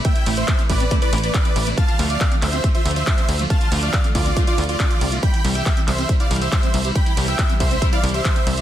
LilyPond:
<<
  \new Staff \with { instrumentName = "Supersaw synth" } { \time 4/4 \key d \dorian \tempo 4 = 139 <e'' g''>8 r16 <c'' e''>8 r16 <b' d''>8 r16 <b' d''>8 <b' d''>4 r16 | <f'' a''>8 r16 <d'' f''>8 r16 <c'' e''>8 r16 <c'' e''>8 <c'' e''>4 r16 | <f'' a''>8 r16 <d'' f''>8 r16 <f' d''>8 r16 <f' d''>8 <f' d''>4 r16 | <g'' b''>8 r16 <e'' g''>8 r16 <c'' e''>8 r16 <d'' f''>8 <c'' e''>4 r16 |
<g'' b''>8 r16 <e'' g''>8 r16 <c'' e''>8 r16 <d'' f''>8 <c'' e''>4 r16 | }
  \new Staff \with { instrumentName = "Acid bass" } { \time 4/4 \key d \dorian a16 e'16 a16 a16 r16 c'16 a16 c'16 a16 e'16 a16 a16 r16 c'16 a16 a16 | a16 f'16 a16 a16 r16 c'16 a16 c'16 a16 f'16 a16 a16 a16 c'16 a16 a16 | a16 f'16 a16 a16 a16 c'16 a16 c'16 a16 f'16 f'16 f'16 d'16 f'16 c'16 a16 | g16 e'16 g16 g'16 g16 c'16 g16 c'16 g16 e'16 g16 g'16 g16 c'16 g16 g'16 |
g16 e'16 g16 g'16 g16 c'16 g16 c'16 g16 e'16 g16 g'16 g16 c'16 g16 g'16 | }
  \new Staff \with { instrumentName = "String section" } { \clef bass \time 4/4 \key d \dorian <c e a e'>8 <c e a e'>8 r16 <c e a e'>16 <c e a e'>8 <c e a e'>8 <c e a e'>8 <c e a e'>8 r16 <c e a e'>16 | <d f a f'>8 <d f a f'>8 r16 <d f a f'>16 <d f a f'>8 <d f a f'>8 <d f a f'>8 <d f a f'>8 r16 <d f a f'>16 | <d f a f'>8 <d f a f'>8 r16 <d f a f'>16 <d f a f'>8 <d f a f'>8 <d f a f'>8 <d f a f'>8 r16 <d f a f'>16 | <c e g e'>8 <c e g e'>8 r16 <c e g e'>16 <c e g e'>8 <c e g e'>8 <c e g e'>8 <c e g e'>8 r16 <c e g e'>16 |
<c e g e'>8 <c e g e'>8 r16 <c e g e'>16 <c e g e'>8 <c e g e'>8 <c e g e'>8 <c e g e'>8 r16 <c e g e'>16 | }
  \new Staff \with { instrumentName = "Analog synth bass" } { \clef bass \time 4/4 \key d \dorian r8 a,,8 r8 a,,8 r8 a,,8 r8 a,,8 | r8 d,8 r8 d,8 r8 d,8 r8 d,8 | r8 d,8 r8 d,8 r8 d,8 r8 c,8 | r8 c,8 r8 c,8 r8 c,8 r8 c,8 |
r8 c,8 r8 c,8 r8 c,8 r8 c,8 | }
  \new DrumStaff \with { instrumentName = "Drums" } \drummode { \time 4/4 <hh bd>16 hh16 <hho cymr>16 hh16 <hc hh bd>16 hh16 <hho bd cymr>16 hh16 <hh bd>16 hh16 <hho cymr>32 hh32 hh16 <hc hh bd>16 hh16 <hho cymr>16 hh16 | <hh bd>16 hh16 <hho cymr>16 hh16 <hc hh bd>16 hh16 <hc hho cymr>16 hh16 <hh bd>16 hh16 <hho cymr>32 hh32 hh16 <hc hh bd>16 hh16 <hho cymr>16 hh16 | <hh bd>16 hh16 <hho cymr>16 hh16 <hc hh bd>16 hh16 <hho bd cymr>16 hh16 <hh bd>16 hh16 <hho cymr>32 hh32 hh16 <hc hh bd>16 hh16 <hho cymr>16 hh16 | <hh bd>16 hh16 <hho cymr>16 hh16 <hc hh bd>16 hh16 <hc hho cymr>16 hh16 <hh bd>16 hh16 <hho cymr>32 hh32 hh16 <hc hh bd>16 hh16 <hho cymr>16 hh16 |
<hh bd>16 hh16 <hho cymr>16 hh16 <hc hh bd>16 hh16 <hho bd cymr>16 hh16 <hh bd>16 hh16 <hho cymr>32 hh32 hh16 <hc hh bd>16 hh16 <hho cymr>16 hh16 | }
>>